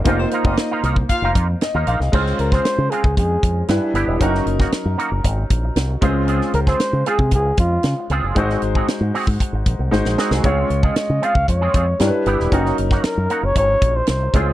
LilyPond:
<<
  \new Staff \with { instrumentName = "Flugelhorn" } { \time 4/4 \key des \major \tempo 4 = 116 r1 | r8 bes'16 c''8. aes'8 aes'4 r4 | r1 | r8 bes'16 c''8. aes'8 aes'8 f'4 r8 |
r1 | des''8. ees''8. f''8 des''4. r8 | r4 bes'8. des''16 des''8. c''16 c''8. r16 | }
  \new Staff \with { instrumentName = "Horn section" } { \time 4/4 \key des \major r16 <c' c''>16 r16 <ees' ees''>8. r8 <f' f''>8 r4. | r1 | r1 | r1 |
r1 | r1 | r1 | }
  \new Staff \with { instrumentName = "Clean electric guitar" } { \time 4/4 \key des \major <bes ees' f'>16 r16 <bes ees' f'>16 <bes ees' f'>16 r16 <bes ees' f'>16 <bes ees' f'>16 r8 <bes ees' f'>16 <bes ees' f'>16 r8 <bes ees' f'>16 <bes ees' f'>16 r16 | <aes c' f'>8 r16 <aes c' f'>16 r8 <aes c' f'>16 r4. r16 <b e' g'>16 <b e' g'>16 | <bes ees' ges'>8 r16 <bes ees' ges'>16 r8 <bes ees' ges'>16 r4. r16 <c' f' aes'>16 <c' f' aes'>16 | <c' f' aes'>8 r16 <c' f' aes'>16 r8 <c' f' aes'>16 r4. r16 <c' f' aes'>16 <c' f' aes'>16 |
<c' ges' aes'>8 r16 <c' ges' aes'>16 r8 <c' ges' aes'>16 r4. r16 <c' ges' aes'>16 <c' ges' aes'>16 | <c' f' aes'>8 r16 <c' f' aes'>16 r8 <c' f' aes'>16 r8 <c' f' aes'>16 <c' f' aes'>16 r8. <b e' g'>16 <b e' g'>16 | <bes ees' ges'>8 r16 <bes ees' ges'>16 r8 <bes ees' ges'>16 r4. r16 <c' f' aes'>16 <c' f' aes'>16 | }
  \new Staff \with { instrumentName = "Grand piano" } { \time 4/4 \key des \major << { r2. ees''8 f''16 ees''16~ | ees''16 r2. r8. | r1 | r1 |
r1 | r1 | r1 | } \\ { <bes ees' f' c''>1 | <aes des' f' c''>2. <g d' e' b'>4 | <ges des' ees' bes'>2.~ <ges des' ees' bes'>8 <aes des' f' c''>8~ | <aes des' f' c''>2.~ <aes des' f' c''>8 r8 |
<aes ees' ges' c''>2. <aes ees' ges' c''>4 | <aes des' f' des''>2. <g d' e' bes' b'>4 | <ges des' ees' bes'>2.~ <ges des' ees' bes'>8 <aes des' f' c''>8 | } >> }
  \new Staff \with { instrumentName = "Fingered electric bass" } { \clef bass \time 4/4 \key des \major f,,8 r16 f,,16 r8 c,8 r16 f,,16 f,8 r16 ees,16 bes,,16 c,16 | des,8 des,8 r16 des16 r16 des,16 f,8 f,8 g,16 r16 g,,16 e,,16 | ges,,8 ges,,8 r16 ges,16 r16 ges,,16 aes,,8 bes,,8 c,8 des,8~ | des,8 des,8 r16 des16 r16 c16 des,8 f,8 des16 r16 des,16 ges,,16 |
aes,,8 aes,,8 r16 aes,16 r16 aes,16 r16 aes,,16 bes,,16 c,16 aes,,16 bes,,16 r16 c,16 | des,8 des,8 r16 des16 r16 des,16 f,8 f,8 g,16 r16 g,,16 e,,16 | ges,,8 ges,,8 r16 ges,16 r16 ges,,16 aes,,8 bes,,8 c,8 des,8 | }
  \new DrumStaff \with { instrumentName = "Drums" } \drummode { \time 4/4 <hh bd>8 hh16 bd16 <hh sn>8 hh16 bd16 <hh bd>8 <hh bd>8 <hh sn>8 hh16 sn16 | <cymc bd>16 sn16 hh16 <bd sn>16 <hh sn>8 hh16 bd16 <hh bd>8 <hh bd>8 <hh sn>8 hh8 | <hh bd>16 sn16 hh16 <bd sn>16 <hh sn>8 hh8 <hh bd>8 <hh bd>8 <hh sn>8 <hh bd>8 | hh16 sn16 hh16 <bd sn>16 <hh sn>8 hh16 bd16 <hh bd>8 <hh bd>8 <hh sn>8 hh8 |
<hh bd>16 sn16 hh16 bd16 <hh sn>8 hho16 bd16 <hh bd>8 <hh bd>8 sn16 sn16 sn16 sn16 | <hh bd>8 hh16 bd16 <hh sn>8 hh16 bd16 <hh bd>8 <hh bd>8 <hh sn>8 hh16 sn16 | <hh bd>16 sn16 hh16 <bd sn>16 <hh sn>8 hh8 <hh bd>8 <hh bd>8 <hh sn>8 <hh bd>8 | }
>>